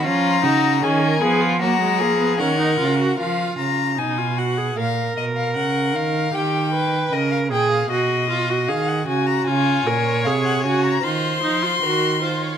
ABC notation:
X:1
M:4/4
L:1/16
Q:1/4=76
K:C#mix
V:1 name="Violin"
a4 g4 a4 f4 | e2 a2 g2 f2 e2 d e f2 e2 | =g4 d e g e d4 e f ^g a | [K:Db] a4 f g a b c'8 |]
V:2 name="Violin"
E2 F2 G A G E F2 G2 A4 | z16 | z16 | [K:Db] d8 c4 B2 c d |]
V:3 name="Viola"
C2 D2 C2 B,2 A, G, A, B, C D E F | E4 D E F G A8 | =G2 B2 A2 ^G2 F2 E F G2 F2 | [K:Db] F2 B2 A2 G2 F2 E F G2 F2 |]
V:4 name="Cello" clef=bass
E,2 C,2 D,2 E,2 F,2 E,2 D,2 C,2 | E,2 C,2 B,,4 A,,2 B,,2 C,2 D,2 | D,4 C,2 A,,2 B,,4 D,2 C,2 | [K:Db] D,2 B,,2 C,2 D,2 E,2 F,2 E,4 |]